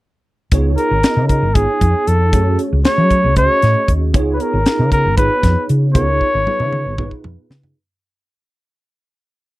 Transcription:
0.52 fingered electric bass C#2, tine electric piano B3 D#4 F4 G#4 C#5, kick, closed hi-hat
0.77 muted trumpet A#4, closed hi-hat
0.91 fingered electric bass G#1
1.03 tine electric piano B3 D#4 F4 G#4 D#5, muted fingered electric bass stroke, snare, closed hi-hat
1.17 fingered electric bass C#3
1.28 muted trumpet A#4, kick, closed hi-hat
1.42 fingered electric bass G#1
1.54 tine electric piano B3 D#4 F4 G#4 C#5, muted trumpet G#4, kick, closed hi-hat
1.81 fingered electric bass F2, kick, closed hi-hat
2.07 fingered electric bass F2, muted trumpet A4, closed hi-hat
2.33 fingered electric bass F#2, tine electric piano A3 C#4 F#4 G#4 C#5, kick, closed hi-hat
2.59 closed hi-hat
2.73 fingered electric bass C#2
2.84 tine electric piano A3 C#4 F#4 G#4 C#5, muted trumpet C#5, snare, closed hi-hat
2.98 fingered electric bass F#3
3.10 kick, closed hi-hat
3.24 fingered electric bass C#2
3.36 tine electric piano A3 C#4 F#4 G#4 D#5, muted trumpet C#5, kick, closed hi-hat
3.62 fingered electric bass A2, snare, closed hi-hat
3.88 fingered electric bass D#2, kick, closed hi-hat
4.13 fingered electric bass C#2, tine electric piano B3 D#4 F4 G#4 C#5, kick, closed hi-hat
4.33 muted trumpet B4
4.40 muted trumpet A#4, closed hi-hat
4.54 fingered electric bass G#1
4.66 tine electric piano B3 D#4 F4 G#4 A#4, muted fingered electric bass stroke, snare, closed hi-hat
4.79 fingered electric bass C#3
4.92 muted trumpet A#4, kick, closed hi-hat
5.05 fingered electric bass G#1
5.17 tine electric piano B3 D#4 F4 G#4 C#5, muted trumpet B4, kick, closed hi-hat
5.43 fingered electric bass F2, kick, snare, closed hi-hat
5.69 fingered electric bass C#3, closed hi-hat
5.94 fingered electric bass C#2, tine electric piano B3 D#4 F4 G#4 A#4, muted trumpet C#5, kick, closed hi-hat
6.21 kick
6.35 fingered electric bass G#1
6.46 tine electric piano B3 D#4 F4 G#4 B4, muted fingered electric bass stroke, high tom
6.60 fingered electric bass C#3, mid tom
6.72 mid tom
6.86 fingered electric bass G#1
6.98 tine electric piano B3 D#4 F4 G#4 B4, kick, mid tom
7.11 kick
7.24 fingered electric bass F2, mid tom
7.50 fingered electric bass C#3, snare
7.63 floor tom

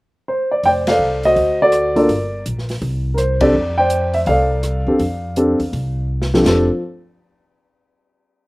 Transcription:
0.28 grand piano C5
0.51 grand piano D5
0.63 upright bass F1, grand piano C5 D5 G5, open hi-hat
0.87 grand piano A4 D5 F5, snare, ride
0.99 upright bass C2
1.23 grand piano F#4 C5 D#5, open hi-hat
1.36 upright bass D2, open hi-hat
1.62 grand piano F#4 A4 D5
1.72 cross-stick, closed hi-hat
1.95 grand piano A#3 D4 F4 A4 A#4 D5, open hi-hat
2.09 upright bass G1, open hi-hat
2.46 upright bass A#1, closed hi-hat
2.59 snare
2.69 snare, open hi-hat
2.82 upright bass C2, open hi-hat
3.14 grand piano A#4 C5, closed hi-hat
3.18 cross-stick
3.41 grand piano C4 D4 G4 A4 D5, kick, ride
3.54 upright bass F2
3.78 grand piano C5 D5 G5
3.90 closed hi-hat
4.14 grand piano E5, open hi-hat
4.26 upright bass C2, grand piano A4 D5 F5, open hi-hat
4.63 cross-stick, closed hi-hat
4.86 upright bass E2, grand piano C4 D4 G4 A4
4.99 upright bass F2, open hi-hat
5.36 grand piano C4 D4 G4 A4, closed hi-hat
5.59 upright bass E2, open hi-hat
5.73 upright bass C2, open hi-hat
6.22 snare
6.34 grand piano F3 C4 D4 G4 A4, snare
6.45 upright bass F1, grand piano C4 D4 G4 A4, snare, crash

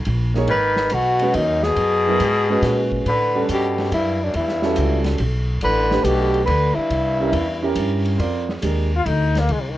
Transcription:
0.05 upright bass A#1, ride
0.34 grand piano A#3 D#4 G#4 C#5, snare
0.47 upright bass G#1, trombone D#3, tenor saxophone B4, ride
0.76 snare
0.89 upright bass B1, trombone B2, hi-hat pedal, ride
0.94 tenor saxophone F#4
1.19 grand piano G#3 C#4 F#4 B4, ride
1.34 upright bass D#2, trombone F#2, tenor saxophone D#4, ride
1.63 trombone B2, tenor saxophone G#4, snare
1.76 upright bass F#2, ride
2.07 grand piano F#3 B3 E4 A#4
2.20 upright bass G#2, hi-hat pedal, ride
2.49 grand piano G#3 C#4 F#4 B4
2.62 upright bass A#2, snare, ride
2.92 kick
3.05 upright bass A2, trombone D3, tenor saxophone B4, ride
3.35 grand piano G3 C#4 A4 F#5
3.49 upright bass G2, trombone B2, tenor saxophone G4, hi-hat pedal, ride
3.78 snare, ride
3.92 upright bass F#2, trombone G2, tenor saxophone E4, ride
4.23 trombone F#2, tenor saxophone D4
4.34 upright bass E2, tenor saxophone E4, ride
4.38 trombone G2
4.48 snare
4.62 grand piano G3 C#4 F#4 A4, snare
4.76 upright bass C#2, hi-hat pedal, ride
5.04 snare, ride
5.18 upright bass B1, ride
5.61 upright bass A1, trombone D3, tenor saxophone B4, ride
5.91 grand piano A3 D4 G4 B4, snare
6.04 upright bass B1, trombone B2, tenor saxophone G4, hi-hat pedal, ride
6.34 ride
6.46 upright bass D2, trombone D3, tenor saxophone B4, ride
6.75 trombone G2, tenor saxophone E4, muted upright bass stroke
6.90 upright bass C2, ride
7.20 grand piano C#4 E4 G4 A#4
7.32 upright bass E2, ride
7.62 grand piano C#4 E4 G4 A#4
7.75 upright bass G2, hi-hat pedal, ride
8.05 ride
8.18 upright bass F2, grand piano C4 F4 A#4 D5, ride
8.49 snare
8.62 upright bass D#2, grand piano G#3 D4 G4 A#4, hi-hat pedal, ride
8.96 trombone F4
9.06 upright bass D2, trombone D#4, ride
9.35 trombone A#3, snare, ride
9.49 upright bass C2, trombone G#3, ride
9.61 trombone C3
9.71 trombone D#3

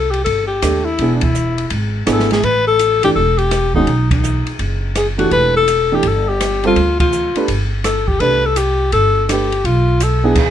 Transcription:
Already playing: upright bass C2, alto saxophone A4
0.11 alto saxophone G4, ride
0.24 upright bass G1, alto saxophone A4, kick, ride
0.47 alto saxophone G4
0.62 upright bass D#2, grand piano A3 D4 G4 A4, cross-stick, hi-hat pedal, ride
0.85 alto saxophone E4
0.99 upright bass E1, grand piano B3 D4 E4 G#4, kick, ride
1.15 alto saxophone D4
1.21 alto saxophone E4, kick, ride
1.35 hi-hat pedal
1.58 ride
1.70 upright bass G#1, kick, ride
2.06 upright bass G#1, grand piano B3 D4 E4 G#4, cross-stick, hi-hat pedal, ride
2.12 alto saxophone A4
2.19 snare
2.31 alto saxophone G#4, snare, ride
2.43 upright bass A1, alto saxophone B4, kick, ride
2.68 alto saxophone A4
2.79 hi-hat pedal, ride
3.03 upright bass G1, grand piano E3 A3 D4 G4, alto saxophone G4, ride
3.15 upright bass E1, alto saxophone A4, kick
3.38 alto saxophone G4, ride
3.51 cross-stick, hi-hat pedal, ride
3.75 grand piano D#3 G#3 C#4 F#4, alto saxophone D#4, kick
3.87 upright bass B1, kick, ride
4.11 alto saxophone D#4, kick, ride
4.24 hi-hat pedal
4.47 muted upright bass stroke, ride
4.59 upright bass F#1, kick, ride
4.95 alto saxophone G#4, cross-stick, hi-hat pedal, ride
5.18 grand piano E3 A3 D4 G4, alto saxophone F#4, ride
5.31 upright bass E1, alto saxophone B4, kick, ride
5.56 alto saxophone A4
5.68 hi-hat pedal, ride
5.92 grand piano E3 A3 D4 G4, alto saxophone G4
6.03 upright bass G1, kick, ride
6.08 alto saxophone A4
6.29 alto saxophone G4
6.41 cross-stick, hi-hat pedal, ride
6.64 grand piano G3 C4 F4 A4, alto saxophone F4, ride
6.76 upright bass D2, kick, ride
7.00 alto saxophone F4, kick, ride
7.12 hi-hat pedal
7.35 grand piano A3 D4 G4 B4, muted upright bass stroke, ride
7.48 upright bass G1, kick, ride
7.84 alto saxophone A4, cross-stick, hi-hat pedal, ride
8.08 alto saxophone G4, kick
8.20 upright bass C2, grand piano A3 D4 G4 B4, alto saxophone B4, kick, ride
8.46 alto saxophone A4
8.56 alto saxophone G4, hi-hat pedal, ride
8.92 upright bass G1, alto saxophone A4, kick, ride
9.28 grand piano A3 D4 G4 B4, alto saxophone G4, cross-stick, hi-hat pedal, ride
9.52 ride
9.64 upright bass B1, alto saxophone F4, kick, ride
10.00 alto saxophone A4, hi-hat pedal, ride
10.23 grand piano B3 D4 E4 G#4, alto saxophone G#4
10.35 kick, crash, ride

